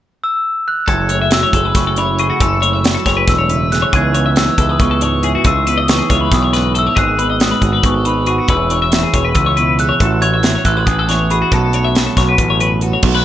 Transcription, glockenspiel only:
0.24 0.68 E6 medium
0.68 0.87 F#6 medium
0.89 1.33 G#6 medium
1.33 1.73 E6 loud
1.76 1.96 C#6 medium
1.98 2.20 B5 medium
2.20 2.40 C#6 medium
2.41 3.02 E6 medium
3.29 3.73 E6 medium
3.72 3.92 F#6 medium
3.96 4.39 G#6 medium
4.37 4.70 E6 medium
4.71 4.80 D#6 medium
4.82 5.48 C#6 medium
5.47 5.79 E6 medium
5.80 5.90 D#6 medium
5.91 6.34 C#6 medium
6.34 6.78 D#6 medium
6.79 6.99 E6 medium
6.98 7.42 F#6 medium
7.41 7.81 D#6 medium
7.86 8.05 C#6 medium
8.06 8.26 B5 medium
8.28 8.48 C#6 medium
8.50 9.11 E6 medium
9.35 9.80 E6 medium
9.80 10.20 F#6 medium
10.22 10.62 G#6 loud
10.66 10.88 F#6 medium
10.86 11.09 D#6 medium
11.10 11.30 C#6 medium
11.31 11.51 B5 medium
11.54 12.79 A5 medium

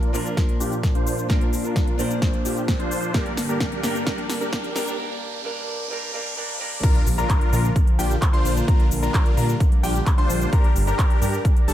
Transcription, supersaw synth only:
0.00 0.11 D4 medium
0.00 0.11 F4 medium
0.00 0.11 A#4 medium
0.14 0.30 D4 medium
0.14 0.30 F4 medium
0.14 0.30 A#4 medium
0.60 0.76 D4 medium
0.60 0.76 F4 medium
0.60 0.76 G4 medium
0.95 1.27 D4 medium
0.95 1.27 F4 medium
0.95 1.27 C5 loud
1.30 1.46 D4 medium
1.30 1.46 F4 medium
1.30 1.46 A#4 medium
1.64 1.96 D4 medium
1.64 1.96 F4 medium
1.64 1.96 A#4 medium
1.99 2.15 D4 medium
1.99 2.15 F4 medium
1.99 2.15 A#4 medium
2.45 2.61 D4 medium
2.45 2.61 F4 medium
2.45 2.61 G4 medium
2.80 3.11 D4 loud
2.80 3.11 F4 medium
2.80 3.11 C5 loud
3.14 3.30 D4 medium
3.14 3.30 G4 medium
3.14 3.30 A#4 medium
3.49 3.81 D4 medium
3.49 3.81 G4 medium
3.49 3.81 A#4 medium
3.83 4.00 D4 medium
3.83 4.00 G4 medium
3.83 4.00 A#4 medium
4.07 4.23 D4 medium
4.07 4.23 G4 medium
4.07 4.23 A#4 medium
4.41 4.73 D4 medium
4.41 4.73 G4 medium
4.41 4.73 A#4 medium
4.76 4.92 D4 medium
4.76 4.92 G4 medium
4.76 4.92 A#4 medium
6.83 7.00 D4 medium
6.83 7.00 F4 medium
6.83 7.00 A#4 medium
7.18 7.50 D4 medium
7.18 7.50 F4 medium
7.18 7.50 A#4 medium
7.53 7.69 D4 medium
7.53 7.69 F4 medium
7.53 7.69 A#4 medium
7.99 8.15 D4 medium
7.99 8.15 F4 medium
7.99 8.15 G4 medium
8.33 8.65 D4 medium
8.33 8.65 F4 medium
8.33 8.65 C5 loud
8.68 8.84 D4 medium
8.68 8.84 F4 medium
8.68 8.84 A#4 medium
9.03 9.35 D4 medium
9.03 9.35 F4 medium
9.03 9.35 A#4 medium
9.37 9.53 D4 medium
9.37 9.53 F4 medium
9.37 9.53 A#4 medium
9.83 10.00 D4 medium
9.83 10.00 F4 medium
9.83 9.99 G4 medium
10.18 10.50 D4 loud
10.18 10.50 F4 medium
10.18 10.50 C5 loud
10.52 10.69 D4 medium
10.52 10.69 G4 medium
10.52 10.69 A#4 loud
10.87 11.19 D4 medium
10.87 11.19 G4 medium
10.87 11.19 A#4 medium
11.22 11.38 D4 medium
11.22 11.38 G4 medium
11.22 11.38 A#4 medium
11.68 11.73 D4 medium
11.68 11.73 G4 medium
11.68 11.73 A4 medium

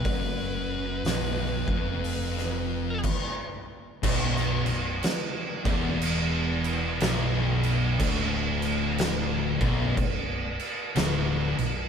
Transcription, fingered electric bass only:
0.05 1.01 F#1 medium
1.04 1.63 B0 medium
1.67 3.00 F1 medium
4.04 4.62 B0 loud
4.65 4.99 B0 medium
5.66 6.97 E1 loud
7.01 7.96 B0 medium
8.00 9.57 D1 loud
9.61 9.95 B0 loud
9.97 10.55 B0 medium
10.95 11.54 D1 loud
11.58 11.89 B0 medium

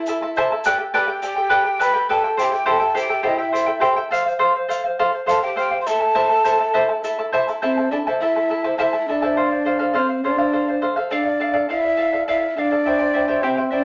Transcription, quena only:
0.00 0.38 E5 medium
0.94 1.00 A5 medium
0.99 1.21 G5 medium
1.24 1.83 G5 loud
1.82 2.10 B5 loud
2.11 2.37 A5 medium
2.40 2.67 G5 medium
2.40 2.45 A5 medium
2.68 2.99 A5 medium
2.98 3.28 G5 medium
3.27 3.92 E5 medium
5.30 5.42 A5 medium
5.42 5.57 G5 medium
5.59 5.79 G5 loud
5.81 5.89 C6 medium
5.87 7.33 A5 loud
7.62 7.89 C5 medium
7.91 7.98 D5 medium
8.21 8.75 E5 medium
8.78 8.83 F5 medium
8.82 9.02 E5 medium
9.02 9.07 E5 medium
9.07 9.96 D5 medium
9.07 9.12 E5 medium
9.96 10.23 C5 medium
9.96 10.00 D5 medium
10.24 10.85 D5 medium
11.13 11.66 D5 medium
11.70 12.24 E5 loud
12.28 12.49 E5 medium
12.49 12.55 E5 medium
12.55 12.60 E5 medium
12.59 13.43 D5 medium
13.42 13.70 C5 medium
13.71 13.84 D5 medium

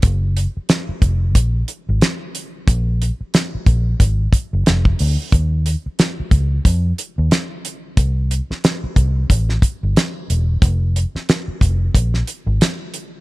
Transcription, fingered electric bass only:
0.04 0.45 F#1 medium
0.57 muted fingered electric bass stroke soft
0.89 muted fingered electric bass stroke soft
1.02 1.36 F1 medium
1.36 1.62 A#1 medium
1.89 1.99 G#1 medium
2.68 3.10 A#1 loud
3.21 muted fingered electric bass stroke soft
3.55 muted fingered electric bass stroke soft
3.67 3.93 A#1 medium
4.00 4.26 G#1 medium
4.53 4.64 F#1 medium
4.67 4.93 F1 medium
5.01 5.15 D2 medium
5.33 5.74 D#2 medium
5.86 muted fingered electric bass stroke soft
6.20 muted fingered electric bass stroke soft
6.32 6.58 C#2 medium
6.66 6.92 F2 medium
7.18 7.29 D#2 medium
7.98 8.39 C2 medium
8.51 muted fingered electric bass stroke soft
8.84 muted fingered electric bass stroke soft
8.97 9.23 C2 medium
9.30 9.56 A1 medium
9.83 9.94 G1 medium
10.30 10.56 E1 medium
10.62 11.04 F1 loud
11.15 muted fingered electric bass stroke soft
11.48 muted fingered electric bass stroke soft
11.62 11.88 F1 medium
11.95 12.21 A#1 medium
12.47 12.58 G#1 medium

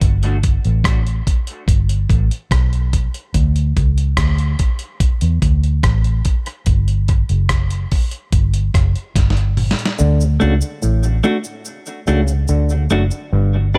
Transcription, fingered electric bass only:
0.02 0.58 G1 loud
0.65 1.21 A1 medium
1.68 2.05 G1 medium
2.10 2.28 A1 medium
2.51 3.07 B1 medium
3.35 3.72 D2 loud
3.77 4.14 C#2 medium
4.17 4.55 D2 medium
5.22 5.40 E2 medium
5.42 5.80 D2 medium
5.84 6.21 A1 medium
6.67 7.23 G1 medium
7.30 7.85 F#1 medium
8.33 8.70 G1 medium
8.75 8.94 F#1 medium
9.16 9.72 G1 medium
10.00 10.37 D2 loud
10.42 10.60 C#2 medium
10.83 11.20 A1 medium
12.08 12.45 C#2 medium
12.49 12.86 D2 medium
12.91 13.09 F#1 medium
13.33 13.78 G1 loud

